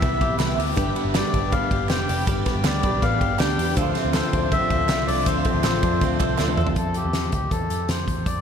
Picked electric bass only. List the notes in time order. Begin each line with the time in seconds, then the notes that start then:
0.03 C2
0.21 B1
0.39 C2
0.57 D2
0.78 G1
1.05 G1
1.34 G1
1.71 G1
1.90 F1
2.10 F1
2.27 G1
2.55 G1
2.65 D2
2.84 B1
3.02 A1
3.21 G1
3.40 D2
3.58 E2
3.77 D2
4.05 D2
4.33 D2
4.70 D2
4.89 C2
5.08 C2
5.27 D2
5.54 D2
5.64 A1
5.83 F2
6.01 D2
6.20 C2
6.39 D2
6.57 E2
6.76 F2
7.05 E2
7.33 D2
7.52 E2
7.70 F2
7.89 F2
8.08 E2
8.26 F2